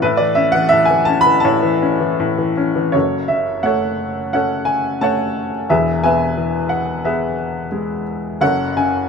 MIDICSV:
0, 0, Header, 1, 2, 480
1, 0, Start_track
1, 0, Tempo, 708383
1, 16, Time_signature, 4, 2, 24, 8
1, 977, Tempo, 738007
1, 2417, Tempo, 680272
1, 6250, End_track
2, 0, Start_track
2, 0, Title_t, "Upright piano"
2, 0, Program_c, 0, 0
2, 0, Control_c, 0, 64, 127
2, 15, Note_on_c, 0, 71, 89
2, 18, Note_on_c, 0, 45, 70
2, 25, Control_c, 0, 64, 0
2, 31, Note_on_c, 0, 64, 62
2, 117, Note_on_c, 0, 74, 89
2, 132, Note_on_c, 0, 52, 53
2, 137, Note_off_c, 0, 71, 0
2, 145, Control_c, 0, 64, 127
2, 238, Note_on_c, 0, 76, 92
2, 245, Note_on_c, 0, 61, 58
2, 248, Note_off_c, 0, 74, 0
2, 352, Note_on_c, 0, 78, 97
2, 359, Note_off_c, 0, 52, 0
2, 367, Note_off_c, 0, 76, 0
2, 370, Note_on_c, 0, 52, 56
2, 465, Note_on_c, 0, 76, 101
2, 480, Note_off_c, 0, 45, 0
2, 484, Note_off_c, 0, 78, 0
2, 490, Note_on_c, 0, 45, 66
2, 579, Note_on_c, 0, 80, 88
2, 601, Note_off_c, 0, 52, 0
2, 601, Note_off_c, 0, 76, 0
2, 611, Note_on_c, 0, 52, 60
2, 713, Note_on_c, 0, 81, 96
2, 720, Note_off_c, 0, 80, 0
2, 724, Note_off_c, 0, 61, 0
2, 734, Note_on_c, 0, 61, 55
2, 819, Note_on_c, 0, 83, 108
2, 835, Note_off_c, 0, 81, 0
2, 846, Note_off_c, 0, 52, 0
2, 856, Note_on_c, 0, 52, 58
2, 950, Note_on_c, 0, 81, 91
2, 957, Note_off_c, 0, 64, 0
2, 964, Note_off_c, 0, 83, 0
2, 969, Note_off_c, 0, 45, 0
2, 979, Note_on_c, 0, 45, 77
2, 980, Note_on_c, 0, 73, 65
2, 1088, Note_off_c, 0, 52, 0
2, 1098, Note_on_c, 0, 52, 56
2, 1214, Note_off_c, 0, 61, 0
2, 1224, Note_on_c, 0, 61, 62
2, 1334, Note_off_c, 0, 52, 0
2, 1344, Note_on_c, 0, 52, 60
2, 1459, Note_off_c, 0, 45, 0
2, 1468, Note_on_c, 0, 45, 71
2, 1579, Note_off_c, 0, 52, 0
2, 1589, Note_on_c, 0, 52, 64
2, 1675, Note_off_c, 0, 81, 0
2, 1702, Note_off_c, 0, 61, 0
2, 1712, Note_on_c, 0, 61, 64
2, 1823, Note_off_c, 0, 52, 0
2, 1833, Note_on_c, 0, 52, 64
2, 1929, Note_off_c, 0, 73, 0
2, 1939, Note_off_c, 0, 45, 0
2, 1940, Note_on_c, 0, 73, 69
2, 1945, Note_off_c, 0, 61, 0
2, 1947, Note_on_c, 0, 30, 48
2, 1948, Note_on_c, 0, 42, 56
2, 1949, Note_off_c, 0, 52, 0
2, 1954, Note_on_c, 0, 69, 49
2, 1955, Note_on_c, 0, 66, 47
2, 1963, Control_c, 0, 64, 0
2, 2092, Control_c, 0, 64, 127
2, 2163, Note_off_c, 0, 73, 0
2, 2173, Note_on_c, 0, 76, 67
2, 2180, Note_on_c, 0, 49, 45
2, 2394, Note_off_c, 0, 76, 0
2, 2400, Note_on_c, 0, 78, 72
2, 2403, Note_on_c, 0, 57, 44
2, 2409, Note_off_c, 0, 69, 0
2, 2417, Note_on_c, 0, 73, 60
2, 2419, Note_on_c, 0, 69, 54
2, 2866, Note_off_c, 0, 78, 0
2, 2876, Note_off_c, 0, 66, 0
2, 2893, Note_off_c, 0, 69, 0
2, 2894, Note_on_c, 0, 78, 75
2, 2895, Note_off_c, 0, 73, 0
2, 2897, Note_on_c, 0, 61, 53
2, 2904, Note_on_c, 0, 69, 53
2, 2906, Note_on_c, 0, 73, 53
2, 3109, Note_off_c, 0, 49, 0
2, 3120, Note_on_c, 0, 80, 82
2, 3144, Note_off_c, 0, 78, 0
2, 3343, Note_off_c, 0, 57, 0
2, 3373, Note_off_c, 0, 73, 0
2, 3375, Note_on_c, 0, 57, 50
2, 3375, Note_on_c, 0, 81, 81
2, 3376, Note_off_c, 0, 80, 0
2, 3384, Note_on_c, 0, 73, 63
2, 3391, Note_on_c, 0, 78, 64
2, 3709, Note_off_c, 0, 81, 0
2, 3824, Note_off_c, 0, 30, 0
2, 3824, Note_off_c, 0, 42, 0
2, 3824, Note_off_c, 0, 61, 0
2, 3827, Note_off_c, 0, 69, 0
2, 3829, Note_off_c, 0, 73, 0
2, 3833, Note_off_c, 0, 78, 0
2, 3839, Note_off_c, 0, 57, 0
2, 3856, Note_on_c, 0, 40, 62
2, 3858, Note_on_c, 0, 76, 79
2, 3861, Note_on_c, 0, 28, 57
2, 3862, Note_on_c, 0, 71, 58
2, 3864, Note_on_c, 0, 68, 58
2, 3865, Control_c, 0, 64, 0
2, 3968, Control_c, 0, 64, 127
2, 4078, Note_off_c, 0, 76, 0
2, 4096, Note_off_c, 0, 71, 0
2, 4096, Note_on_c, 0, 80, 81
2, 4097, Note_on_c, 0, 47, 45
2, 4107, Note_on_c, 0, 71, 65
2, 4108, Note_on_c, 0, 76, 66
2, 4334, Note_on_c, 0, 52, 46
2, 4542, Note_off_c, 0, 80, 0
2, 4560, Note_on_c, 0, 78, 70
2, 4780, Note_off_c, 0, 68, 0
2, 4802, Note_off_c, 0, 71, 0
2, 4802, Note_off_c, 0, 76, 0
2, 4807, Note_off_c, 0, 78, 0
2, 4808, Note_on_c, 0, 59, 62
2, 4813, Note_on_c, 0, 71, 53
2, 4813, Note_on_c, 0, 76, 68
2, 4814, Note_on_c, 0, 68, 50
2, 5014, Note_off_c, 0, 47, 0
2, 5254, Note_off_c, 0, 52, 0
2, 5283, Note_on_c, 0, 56, 54
2, 5501, Note_off_c, 0, 76, 0
2, 5740, Note_off_c, 0, 40, 0
2, 5742, Note_off_c, 0, 59, 0
2, 5743, Note_off_c, 0, 28, 0
2, 5745, Note_off_c, 0, 68, 0
2, 5745, Note_off_c, 0, 71, 0
2, 5754, Note_off_c, 0, 56, 0
2, 5770, Note_on_c, 0, 42, 66
2, 5771, Note_on_c, 0, 30, 64
2, 5774, Note_on_c, 0, 69, 58
2, 5774, Note_on_c, 0, 78, 92
2, 5777, Control_c, 0, 64, 0
2, 5778, Note_on_c, 0, 73, 60
2, 5914, Control_c, 0, 64, 127
2, 6023, Note_off_c, 0, 78, 0
2, 6023, Note_on_c, 0, 49, 51
2, 6025, Note_on_c, 0, 80, 77
2, 6242, Note_off_c, 0, 73, 0
2, 6248, Note_off_c, 0, 80, 0
2, 6250, Note_off_c, 0, 30, 0
2, 6250, Note_off_c, 0, 42, 0
2, 6250, Note_off_c, 0, 49, 0
2, 6250, Note_off_c, 0, 69, 0
2, 6250, End_track
0, 0, End_of_file